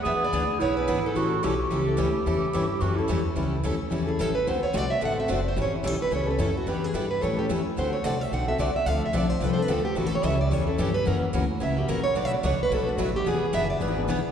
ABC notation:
X:1
M:4/4
L:1/8
Q:"Swing" 1/4=218
K:Amix
V:1 name="Steel-string acoustic guitar"
e d2 z c B2 A- | A8- | A6 z2 | z4 z ^G A B |
=c ^c d e f e d =c | c E G B c B A F | G ^G A B c =G z2 | =c ^c d e f e d e |
=f e d =c (3B c B A G | (3F A c e d c E G B | ^A z3 e G A c | (3d e d c B A F E G |
^G2 e d4- d |]
V:2 name="Clarinet"
^G4 E4 | F2 G6- | G4 F E2 z | z8 |
z8 | z8 | z8 | z8 |
z8 | z8 | z8 | z8 |
z8 |]
V:3 name="Steel-string acoustic guitar"
[E,B,D^G] z [E,B,DG] z [E,B,DG] [B,DG] [E,B,DG] z | [E,G,CEA] z [E,G,CEA] z [E,G,CEA] [CEA] [E,G,CEA] z | [E,G,CEA] z [E,G,CEA] z [E,G,CEA] [CEA] [E,G,CEA] z | [E,G,CEA] z [E,G,CEA] z [E,G,CEA] [CEA] [E,G,CEA] z |
[D,A,=CFA] z [D,A,CFA] z [D,A,CFA] [CFA] [D,A,CFA] z | [E,G,CEA] z [E,G,CEA] z [E,G,CEA] [CEA] [E,G,CEA] z | [E,B,DG] z [E,B,DG] z [E,G,CEA] [CEA] [E,G,CEA] z | [D,A,=CFA] z [D,A,CFA] z [D,A,CFA] [CFA] [D,A,CFA] z |
[D,=F,=CDA] z [D,F,CDA] z [D,F,CDA] [CDA] [D,F,CDA] z | [E,G,CEA] z [E,G,CEA] z [E,G,CEA] [CEA] [E,G,CEA] z | [C,E,^A,CF] z [C,E,A,CF] z [C,E,A,CF] [A,CF] [C,E,A,CF] z | [B,,F,A,DF] z [B,,F,A,DF] z [B,,F,A,DF] [A,DF] [B,,F,A,DF] z |
[E,B,D^G] z [E,B,DG] z [E,B,DG] [B,DG] [E,B,DG] z |]
V:4 name="Steel-string acoustic guitar"
[E,B,D^GB] z [E,B,DGB] z [E,B,DGB] z [E,B,DGB] z | [E,G,CEA] z [E,G,CEA] z [E,G,CEA] z [E,G,CEA] z | [E,G,CEA] z [E,G,CEA] z [E,G,CEA] z [E,G,CEA] z | [E,G,CEA] z [E,G,CEA] z [E,G,CEA] z [E,G,CEA] z |
[D,A,=CFA] z [D,A,CFA] z [D,A,CFA] z [D,A,CFA] z | [E,G,CEA] z [E,G,CEA] z [E,G,CEA] z [E,G,CEA] z | [E,G,DEB] z [E,G,DEB] z [E,G,CEA] z [E,G,CEA] z | [D,A,=CFA] z [D,A,CFA] z [D,A,CFA] z [D,A,CFA] z |
[D,=F,=CDA] z [D,F,CDA] z [D,F,CDA] z [D,F,CDA] z | [E,G,CEA] z [E,G,CEA] z [E,G,CEA] z [E,G,CEA] z | [F,CE^A] z [F,CEA] z [F,CEA] z [F,CEA] z | [B,,F,A,DFB] z [B,,F,A,DFB] z [B,,F,A,DFB] z [B,,F,A,DFB] z |
[E,B,D^GB] z [E,B,DGB] z [E,B,DGB] z [E,B,DGB] z |]
V:5 name="Upright bass" clef=bass
E,,2 D,,2 B,,,2 ^G,,,2 | A,,,2 B,,,2 C,,2 D,,2 | E,, z G,,2 F,,2 E,,2 | C,,2 D,,2 E,,2 A,,,2 |
D,, z =C,,2 A,,,2 F,,,2 | A,,, z B,,, z C,,2 F,,2 | E,,2 G,,2 A,,2 E,,2 | D,,2 =C,,2 B,,,2 C,, z |
D,,2 B,,,2 =C,,2 D,,2 | A,,,2 C,,2 E,,2 G,,2 | F,,2 D,,2 C,,2 ^A,,,2 | B,,, z C,, z B,,, z A,,,2 |
E,,, z F,,,2 ^G,,,2 B,,, z |]